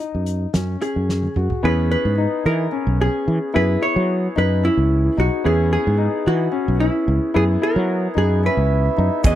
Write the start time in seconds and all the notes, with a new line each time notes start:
Already playing: D#5
0.00 D#4
0.15 F#2
0.26 closed hi-hat
0.54 F#2 C#4, snare, closed hi-hat
0.81 C#4 G#4, closed hi-hat
0.96 F#2
1.09 snare
1.23 high tom
1.36 F#2 F#4, mid tom
1.50 floor tom
1.63 E2 B3 C#4 E4 G#4 B4
1.92 B4
2.05 G#2
2.18 D#4
2.46 E3 A#4
2.72 C#4
2.87 B1
3.00 C#4 G#4
3.28 E3
3.54 F#2 B3 E4 G#4 B4
3.81 E4 C#5
3.96 F#3
4.36 F#2 D#4 B4
4.63 C#4 E4
4.77 C#2
5.17 B1 D#4 F#4
5.44 E2 B3 C#4 E4 G#4
5.73 G#4
5.87 G#2
5.98 D#4
6.27 E3 F#4
6.52 C#4
6.68 B1
6.79 C#4 E4
7.08 C#2
7.34 F#2 B3 E4 G#4
7.62 E4 A#4
7.76 F#3
8.15 F#2 B3 D#4 G#4
8.43 C#4 E4 B4
8.57 C#2
8.97 F#2 D#4
9.23 E2 B3 C#4 E4 F#4 G#4 D#5, kick, ride, shaker